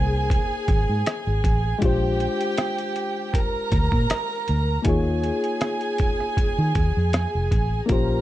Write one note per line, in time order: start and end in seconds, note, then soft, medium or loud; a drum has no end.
0.00 0.37 C2 medium
0.00 1.77 A#3 medium
0.00 1.77 D#4 medium
0.00 1.78 G#4 medium
0.00 1.79 G#4 medium
0.00 1.78 A#4 medium
0.00 1.80 C5 medium
0.00 1.78 G#5 medium
0.30 kick medium
0.30 closed hi-hat medium
0.68 0.84 G#1 medium
0.68 kick medium
0.68 closed hi-hat medium
0.90 1.02 G#2 medium
1.06 cross-stick loud
1.06 closed hi-hat medium
1.27 1.40 G#1 medium
1.44 1.73 A1 medium
1.44 kick medium
1.44 closed hi-hat medium
1.79 2.26 A#1 medium
1.79 4.80 G#3 medium
1.79 4.81 D4 medium
1.79 4.82 F4 medium
1.79 3.31 G4 medium
1.79 3.31 G5 medium
1.79 kick loud
1.79 closed hi-hat medium
1.84 4.83 G4 medium
1.84 4.84 C5 medium
2.20 closed hi-hat medium
2.41 closed hi-hat soft
2.58 cross-stick medium
2.58 closed hi-hat medium
2.78 closed hi-hat soft
2.96 closed hi-hat medium
3.34 4.83 A#4 medium
3.34 4.83 A#5 medium
3.34 kick medium
3.34 closed hi-hat medium
3.72 3.88 D2 medium
3.72 kick medium
3.72 closed hi-hat medium
3.92 4.06 A#2 medium
3.92 kick medium
4.10 cross-stick medium
4.10 closed hi-hat medium
4.48 4.77 D2 medium
4.48 closed hi-hat medium
4.82 5.30 D#2 medium
4.82 7.84 A#3 medium
4.82 7.85 D#4 medium
4.82 7.86 F4 medium
4.82 7.86 G#4 medium
4.82 7.86 G#5 medium
4.82 kick loud
4.82 closed hi-hat medium
4.87 7.87 G#4 medium
4.87 7.87 C#5 medium
5.23 closed hi-hat medium
5.44 closed hi-hat soft
5.61 cross-stick medium
5.61 closed hi-hat medium
5.81 closed hi-hat soft
5.98 kick medium
5.98 closed hi-hat medium
6.20 cross-stick soft
6.37 kick medium
6.37 closed hi-hat medium
6.59 6.72 D#3 medium
6.75 6.91 D#2 medium
6.75 kick medium
6.75 closed hi-hat medium
6.97 7.25 F2 medium
7.13 cross-stick loud
7.13 closed hi-hat medium
7.35 7.48 F1 medium
7.51 7.80 A1 medium
7.51 kick medium
7.51 closed hi-hat medium
7.86 8.21 A#3 medium
7.86 8.21 C#4 medium
7.86 8.21 F4 medium
7.86 kick loud
7.86 closed hi-hat medium
7.90 8.21 A#1 medium
7.90 8.21 G4 medium
7.90 8.21 A#4 medium
7.90 8.21 C5 medium
7.90 8.21 A#5 medium